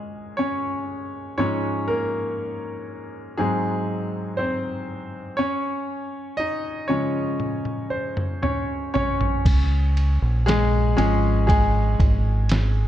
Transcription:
Already playing: A#2 F3 G#3 C#4 G#4
0.37 C#4 C#5
1.38 G#2 F3 G#3 C#4 C#5
1.88 A#3 A#4
3.37 G#2 F#3 G#3 C4 G#4
4.37 C4 C5
5.37 C#4 C#5
6.37 D#4 D#5
6.88 C#3 F3 G#3 C#4 C#5
7.40 high tom
7.65 high tom
7.90 C5
8.17 mid tom
8.42 C#4 C#5, mid tom
8.94 C#4 C#5, floor tom
9.21 floor tom
9.45 C#2, kick, crash, ride
9.97 ride
10.22 A#1
10.46 G#3 G#4, snare, ride
10.96 G#1 F3 G#3 C#4 G#4, ride
11.47 G#3 G#4, kick, ride
11.99 G#1, kick, ride
12.49 snare, ride

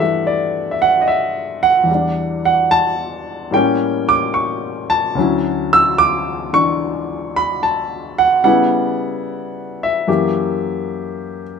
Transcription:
Already playing: G2 E3 B3 F#5 A5
0.00 G3 A3 E5
0.27 D5
0.71 E5
0.82 F#5
1.01 D#5
1.08 E5
1.63 F#5
1.83 E2 E3
1.91 G3 D4
2.45 F#5
2.71 A5
3.51 A2 G3 A#3 G5
3.56 C#4
4.09 D6
4.34 C#6
4.90 A5
5.15 D2 F#3 C#4
5.20 E4
5.73 E6
5.98 D6
6.53 D3 E3 D4 C#6
7.36 B5
7.63 A5
8.18 F#5
8.44 C#3 G3 B3 E4 F#5
9.83 E5
10.07 F#2 E3 A#3 G4

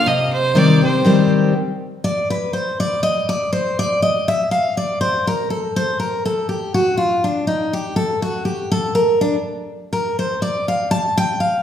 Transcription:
0.06 C3 D#5
0.33 C5
0.55 D#3 G3 C4 G4 D5
0.81 C4 G4 C5
1.04 D#3 G3 C4 G4
2.04 D5
2.30 B4
2.53 C5
2.80 D5
3.03 D#5
3.29 D5
3.53 C5
3.79 D5
4.02 D#5
4.28 E5
4.51 F5
4.77 D5
5.01 C5
5.27 A#4
5.50 A4
5.76 C5
6.00 A#4
6.25 A4
6.49 G4
6.74 F#4
6.97 F4
7.24 D4
7.47 D#4
7.73 G4
7.96 A4
8.22 F#4
8.45 G4
8.72 A4
8.95 A#4
9.21 D4
9.93 A#4
10.19 C5
10.42 D5
10.68 F5
10.91 A5
11.18 G5
11.40 F5

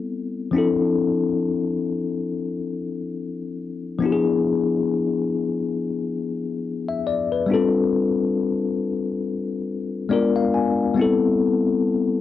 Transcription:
Already playing: G3 B3 C4 E4 A4
0.51 F3 C4 D4
0.56 E4 A4
3.99 F3 B3 D4
4.04 E4 G4
4.12 G#4
6.89 E5
7.07 D5
7.32 B4
7.46 G3 B3 D4
7.52 C4 F4 A4
10.09 G#3 B3 D4 F4 A#4 D5
10.36 F5
10.54 G#5
10.94 G3 B3 C4
10.99 E4 A4

